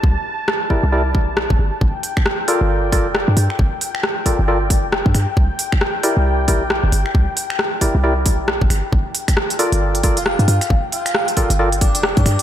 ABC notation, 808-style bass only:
X:1
M:4/4
L:1/16
Q:"Swing 16ths" 1/4=135
K:Gdor
V:1 name="808-style bass" clef=bass
C,, z6 C,,4 B,,,2 G,,, G,,, z | G,,, z6 G,,,4 F,,,2 G,, G,, z | G,,, z6 G,,,4 F,,,2 G,, G,, z | C,, z6 C,,4 B,,,2 G,,, G,,, z |
C,, z6 C,,4 B,,,2 G,,, G,,, z | G,,, z6 G,,,4 F,,,2 G,, G,, z | G,,, z6 G,,,4 F,,,2 G,, G,, z |]